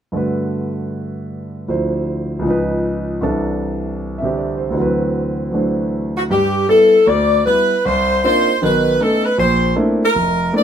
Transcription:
0.12 grand piano G2 D3 A3 F#4
0.17 grand piano B4
1.68 grand piano D2 D3 F3 E4 C5
2.39 grand piano C#2 C#3
2.44 grand piano F3 D#4
2.50 grand piano B4
3.21 grand piano C2 C3 E3 D4 A4
4.18 grand piano C3 E5
4.23 grand piano D3 C4 G4
4.38 grand piano D5
4.57 grand piano C5
4.70 grand piano D2 D3
4.75 grand piano E3 F#3
4.79 grand piano C4 B4
5.52 grand piano E3 F#3 A3 D4 C5
6.16 saxophone section F#4
6.30 grand piano G2, saxophone section G4
6.69 grand piano G3 B3 E4, saxophone section A4
7.07 grand piano D2, saxophone section D5
7.46 grand piano G3 B3 E4, saxophone section B4
7.85 grand piano C2, saxophone section C5
8.23 grand piano A#3 C4 D4 D#4 F4, saxophone section C5
8.62 grand piano B1 D#3, saxophone section B4
9.00 grand piano A3 B3 C#4 D#4, saxophone section A4
9.25 saxophone section B4
9.38 grand piano A#1, saxophone section C5
9.76 grand piano A3 A#3 C4 D4 E4
10.03 saxophone section A#4
10.15 grand piano F1
10.53 grand piano A3 A#3 C4 D4 E4, saxophone section D5

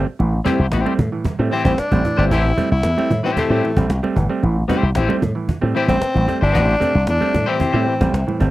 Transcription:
0.07 cajon slap
0.19 slap bass A1, clav A2 E3, cajon slap, muted conga
0.32 clav A3 C4
0.45 clav G3 A3 C4, clean electric guitar C4 E4 G4 C5, cajon bass, muted conga, high conga
0.59 slap bass C2
0.72 slap bass A1, clean electric guitar C4 E4 G4 C5, cajon slap, muted conga
0.85 clav G3 A3 C4, high conga
0.98 slap bass A2, cajon bass, cajon slap, muted conga, high conga, low conga
1.12 clav A2 E3
1.25 muted slap bass stroke, cajon bass, muted conga, high conga, low conga
1.39 slap bass A2, clav G3 A3 C4
1.51 clav A2 E3, clean electric guitar C4 E4 G4 C5, tenor saxophone C4, cajon slap
1.64 slap bass A1, clav G3 A3 C4, tenor saxophone C4, cajon bass, high conga
1.78 tenor saxophone D4, muted slap bass stroke, cajon slap
1.91 slap bass A1, clav G3 A3 C4, cajon bass, high conga
2.05 clav A2 E3, cajon bass, cajon slap, muted conga
2.17 slap bass G1, clav G3 A3 C4, clean electric guitar C4 E4 G4 C5, tenor saxophone D4
2.31 slap bass A1, clav A2 E3, clean electric guitar C4 E4 G4 C5, tenor saxophone E4, cajon bass, muted conga
2.44 clav A3 C4
2.57 clav G3 A3 C4, cajon bass, high conga
2.71 slap bass C2, tenor saxophone E4
2.83 slap bass E2, cajon slap, muted conga
2.97 clav G3 A3 C4, high conga
3.10 slap bass A2, cajon bass, muted conga, high conga, low conga
3.23 clav A2 E3, tenor saxophone C4, clean electric guitar C4 E4 G4 C5
3.37 tenor saxophone A3, clean electric guitar C4 E4 G4 C5, muted slap bass stroke, cajon bass, muted conga, low conga
3.50 slap bass A2, clav G3 A3 C4, clean electric guitar C4 E4 G4 C5
3.63 clav A2 E3, cajon slap, muted conga
3.77 slap bass A1, clav G3 A3 C4, cajon bass, high conga
3.89 slap bass C2, cajon slap, muted conga
4.03 clav G3 A3 C4, high conga
4.16 slap bass G1, clav A2 E3, cajon bass, cajon slap
4.29 clav G3 A3 C4
4.42 slap bass A1, clav A2 E3, cajon slap, muted conga
4.55 clav A3 C4
4.68 clav G3 A3 C4, clean electric guitar C4 E4 G4 C5, cajon bass, muted conga, high conga
4.83 slap bass C2
4.95 slap bass A1, clean electric guitar C4 E4 G4 C5, cajon slap, muted conga
5.08 clav G3 A3 C4, high conga
5.22 slap bass A2, cajon bass, muted conga, high conga, low conga
5.35 clav A2 E3
5.48 muted slap bass stroke, cajon bass, low conga
5.61 slap bass A2, clav G3 A3 C4
5.75 clav A2 E3, clean electric guitar C4 E4 G4 C5, tenor saxophone C4, cajon slap, muted conga
5.88 slap bass A1, clav G3 A3 C4, tenor saxophone C4, cajon bass, high conga
6.01 clav A3 C4, muted slap bass stroke, cajon slap, muted conga
6.14 slap bass A1, clav A2 E3, high conga
6.28 clav G3 A3 C4, cajon bass, cajon slap, muted conga
6.41 slap bass G1, clean electric guitar C4 E4 G4 C5, tenor saxophone D4
6.53 slap bass A1, clav A2 E3, clean electric guitar C4 E4 G4 C5, cajon bass, muted conga
6.68 clav A3 C4
6.80 clav G3 A3 C4, cajon bass, high conga
6.95 slap bass C2
7.07 slap bass E2, tenor saxophone D4, cajon slap
7.21 clav G3 A3 C4, high conga
7.34 slap bass A2, cajon bass, high conga, low conga
7.46 clav A2 E3, clean electric guitar C4 E4 G4 C5, tenor saxophone C4
7.59 clean electric guitar C4 E4 G4 C5, muted slap bass stroke, cajon bass, muted conga, low conga
7.73 slap bass A2, clav G3 A3 C4, clean electric guitar C4 E4 G4 C5
7.87 clav A2 E3, cajon slap
8.00 slap bass A1, clav G3 A3 C4, cajon bass, high conga
8.13 slap bass C2, clav A3 C4, cajon slap, muted conga
8.27 clav A2 E3, high conga
8.40 slap bass G1, clav G3 A3 C4, cajon bass, cajon slap, muted conga

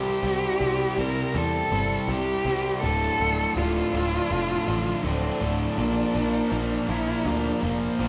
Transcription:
Already playing: picked electric bass C2, distorted electric guitar C3 G3 C4, ambient pad E4 C5 D5 G5, cello G4
0.23 picked electric bass C2, distorted electric guitar C3 G3 C4
0.60 picked electric bass C2, distorted electric guitar C3 G3 C4
0.97 picked electric bass C2, distorted electric guitar C3 G3 C4, cello A#4
1.34 picked electric bass E2, distorted electric guitar C3 G3 C4, cello A4
1.71 picked electric bass G1, distorted electric guitar C3 G3 C4
2.08 picked electric bass C2, distorted electric guitar C3 G3 C4, cello G4
2.45 picked electric bass C2, distorted electric guitar C3 G3 C4
2.82 picked electric bass D1, distorted electric guitar D2 A2 D3, ambient pad F3 A4 D5 A5, cello A4
3.18 picked electric bass D1, distorted electric guitar D2 A2 D3
3.56 picked electric bass D1, distorted electric guitar D2 A2 D3, cello F4
3.93 picked electric bass D1, distorted electric guitar D2 A2 D3
4.31 picked electric bass F1, distorted electric guitar D2 A2 D3
4.68 picked electric bass A1, distorted electric guitar D2 A2 D3
5.04 picked electric bass D1, distorted electric guitar D2 A2 D3, cello C4
5.41 picked electric bass D1, distorted electric guitar D2 A2 D3, cello D4
5.78 picked electric bass A#1, distorted electric guitar A#2 F3 A#3, ambient pad C5 A#5
6.14 picked electric bass A#1, distorted electric guitar A#2 F3 A#3
6.52 picked electric bass A#1, distorted electric guitar A#2 F3 A#3
6.89 picked electric bass A#1, distorted electric guitar A#2 F3 A#3, cello E4
7.25 picked electric bass D2, distorted electric guitar A#2 F3 A#3, cello D4
7.63 picked electric bass F1, distorted electric guitar A#2 F3 A#3, cello A#3
7.99 picked electric bass A#1, distorted electric guitar A#2 F3 A#3, cello C4

